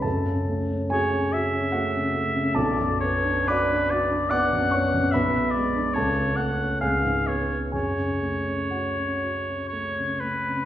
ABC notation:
X:1
M:3/4
L:1/16
Q:1/4=69
K:F#m
V:1 name="Oboe"
z4 c2 e6 | d2 c2 B2 d2 f4 | e2 d2 c2 f2 ^e2 c2 | c8 c2 B2 |]
V:2 name="Grand piano"
[Aa]4 [Gg]4 [Ff]4 | [Aa]4 [dd']4 [dd']2 [cc']2 | [Bb]4 [Aa]4 [Gg]4 | [Gg]4 [Ff]6 z2 |]
V:3 name="Grand piano"
F,, C, A, C F C F C A, C, A, C, | B,,, F,, B, D F D F D B, F,, B, F,, | B,,, B,, G, D C,, C, A, C C,, G,, B, C | F,, C, A, C2 C F C A, C, A, C, |]